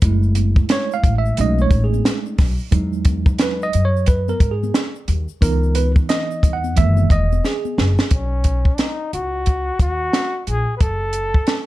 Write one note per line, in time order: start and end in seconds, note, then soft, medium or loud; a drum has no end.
0.02 0.58 F#1 loud
0.02 1.34 G#3 medium
0.02 1.34 A3 medium
0.02 1.35 E4 medium
0.02 kick loud
0.02 closed hi-hat loud
0.02 shaker medium
0.23 shaker soft
0.35 closed hi-hat medium
0.35 high conga soft
0.35 shaker soft
0.56 kick loud
0.56 shaker soft
0.69 0.94 C#5 loud
0.69 snare loud
0.69 closed hi-hat medium
0.69 shaker medium
0.92 1.14 F5 loud
0.92 shaker medium
1.04 1.32 A1 medium
1.04 kick medium
1.04 closed hi-hat medium
1.04 low conga medium
1.04 shaker soft
1.18 1.40 E5 medium
1.26 shaker medium
1.37 1.66 B1 loud
1.37 2.35 G#3 medium
1.37 2.35 A3 medium
1.37 2.36 C#4 soft
1.37 2.36 D#4 medium
1.37 1.60 D#5 medium
1.37 closed hi-hat medium
1.37 shaker medium
1.59 1.84 C#5 medium
1.59 high conga medium
1.59 shaker soft
1.71 1.99 A1 medium
1.71 kick loud
1.71 closed hi-hat medium
1.71 shaker soft
1.84 2.15 G#4 medium
1.94 high conga medium
1.94 shaker medium
2.05 snare loud
2.05 closed hi-hat medium
2.05 shaker medium
2.26 shaker soft
2.38 2.56 B1 loud
2.38 kick loud
2.38 snare soft
2.38 open hi-hat soft
2.38 low conga medium
2.38 shaker soft
2.58 shaker soft
2.71 3.28 E2 loud
2.71 3.69 F#3 medium
2.71 3.70 G#3 medium
2.71 3.70 D#4 medium
2.71 kick loud
2.71 closed hi-hat loud
2.71 shaker medium
2.93 shaker soft
3.05 kick medium
3.05 closed hi-hat medium
3.05 high conga soft
3.05 shaker soft
3.26 kick loud
3.26 shaker medium
3.39 3.64 B4 medium
3.39 snare loud
3.39 closed hi-hat medium
3.39 shaker medium
3.62 3.84 D#5 loud
3.62 shaker soft
3.73 4.30 F#2 medium
3.73 closed hi-hat medium
3.73 low conga medium
3.73 shaker soft
3.85 4.06 C#5 loud
3.97 shaker soft
4.06 4.31 B4 medium
4.06 kick medium
4.06 closed hi-hat medium
4.06 shaker medium
4.28 4.53 A#4 medium
4.28 high conga medium
4.28 shaker soft
4.40 4.68 G#2 medium
4.40 kick medium
4.40 closed hi-hat medium
4.40 shaker soft
4.51 4.83 G#4 medium
4.63 high conga medium
4.63 shaker medium
4.74 snare loud
4.74 closed hi-hat medium
4.74 shaker medium
4.95 shaker soft
5.08 5.25 D#2 medium
5.08 closed hi-hat medium
5.08 low conga medium
5.08 shaker soft
5.28 shaker soft
5.41 5.98 C#2 loud
5.41 6.72 E3 medium
5.41 6.73 B3 medium
5.41 6.73 D#4 medium
5.41 5.77 A#4 medium
5.41 kick loud
5.41 closed hi-hat loud
5.41 shaker medium
5.63 shaker soft
5.75 5.91 B4 loud
5.75 closed hi-hat medium
5.75 high conga soft
5.75 shaker medium
5.96 kick loud
5.96 shaker soft
6.09 6.56 D#5 loud
6.09 snare loud
6.09 closed hi-hat medium
6.09 shaker medium
6.31 shaker soft
6.43 6.80 E2 medium
6.43 kick medium
6.43 closed hi-hat medium
6.43 low conga medium
6.43 shaker soft
6.53 6.75 F#5 medium
6.64 high conga medium
6.64 shaker soft
6.76 7.05 F#1 loud
6.76 7.25 D#3 medium
6.76 7.24 E3 medium
6.76 7.24 G#3 medium
6.76 7.25 A#3 soft
6.76 7.12 E5 loud
6.76 kick medium
6.76 closed hi-hat medium
6.76 shaker medium
6.97 high conga medium
6.97 shaker soft
7.10 7.38 E1 medium
7.10 7.46 D#5 loud
7.10 kick medium
7.10 closed hi-hat medium
7.10 shaker soft
7.32 high conga medium
7.32 shaker medium
7.45 8.08 G#4 medium
7.45 snare medium
7.45 shaker medium
7.65 high conga medium
7.65 shaker soft
7.78 7.95 F#1 loud
7.78 snare medium
7.78 low conga medium
7.78 shaker soft
7.98 snare loud
7.98 shaker medium
8.11 8.67 B1 medium
8.11 8.76 C#4 medium
8.11 kick loud
8.11 closed hi-hat medium
8.44 kick medium
8.44 closed hi-hat medium
8.65 kick medium
8.75 8.82 D4 medium
8.75 closed hi-hat medium
8.79 9.13 D#4 medium
8.79 snare medium
9.13 9.69 C#2 medium
9.13 9.77 F#4 medium
9.13 closed hi-hat medium
9.46 kick medium
9.46 closed hi-hat medium
9.79 10.08 D#2 medium
9.79 10.44 F#4 medium
9.79 kick medium
9.79 closed hi-hat medium
10.13 snare loud
10.13 closed hi-hat medium
10.47 10.64 A#1 medium
10.47 10.75 G#4 medium
10.47 closed hi-hat medium
10.77 11.37 F#1 medium
10.77 11.66 A4 medium
10.77 10.82 B4 medium
10.77 kick loud
10.77 closed hi-hat medium
11.13 closed hi-hat medium
11.34 kick medium
11.47 snare loud
11.47 closed hi-hat medium